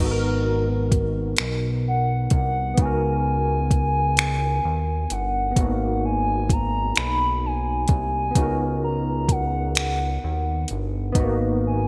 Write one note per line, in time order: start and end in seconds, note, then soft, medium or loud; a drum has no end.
0.00 1.35 G#1 loud
0.00 2.72 B3 medium
0.00 2.73 D#4 medium
0.00 2.75 F#4 medium
0.05 0.09 A4 medium
0.11 2.80 A#4 medium
0.92 kick medium
0.92 closed hi-hat medium
1.37 2.28 B1 medium
1.37 finger snap medium
1.37 closed hi-hat medium
1.88 2.30 F#5 medium
2.30 2.74 C2 medium
2.30 kick medium
2.30 closed hi-hat medium
2.35 2.82 F#5 medium
2.74 5.50 B3 medium
2.74 5.53 D#4 soft
2.74 kick loud
2.74 closed hi-hat medium
2.79 4.60 C#2 loud
2.79 5.55 F#4 medium
2.79 5.14 G#5 medium
2.85 5.57 A#4 medium
3.71 kick medium
3.71 closed hi-hat medium
4.17 finger snap loud
4.17 closed hi-hat medium
4.65 5.07 D#2 medium
5.10 5.53 G1 medium
5.10 6.04 F#5 medium
5.10 closed hi-hat medium
5.51 8.29 B3 medium
5.56 6.93 G#1 loud
5.56 8.31 D#4 medium
5.56 8.33 F#4 medium
5.56 kick medium
5.56 closed hi-hat medium
5.62 8.35 A#3 medium
6.05 6.54 G#5 medium
6.49 6.98 A#5 medium
6.49 kick medium
6.49 closed hi-hat medium
6.96 7.86 B1 medium
6.96 7.47 B5 loud
6.96 finger snap loud
6.96 closed hi-hat medium
7.46 7.91 G#5 medium
7.88 8.32 C2 medium
7.88 8.80 G#5 medium
7.88 kick loud
7.88 closed hi-hat medium
8.31 11.09 B3 medium
8.35 10.18 C#2 medium
8.35 11.11 D#4 medium
8.35 11.12 F#4 medium
8.35 kick loud
8.35 closed hi-hat medium
8.42 11.14 A#4 medium
8.84 9.33 A#5 medium
9.29 9.77 F#5 medium
9.29 kick medium
9.29 closed hi-hat medium
9.75 10.77 F#5 medium
9.75 finger snap loud
9.75 closed hi-hat medium
10.24 10.66 D#2 medium
10.68 11.12 G1 medium
10.68 closed hi-hat medium
11.12 11.88 G#1 loud
11.12 11.88 B3 medium
11.12 11.88 D#4 medium
11.12 kick medium
11.12 closed hi-hat medium
11.19 11.88 A#3 medium
11.19 11.88 F#4 medium
11.67 11.88 G#5 medium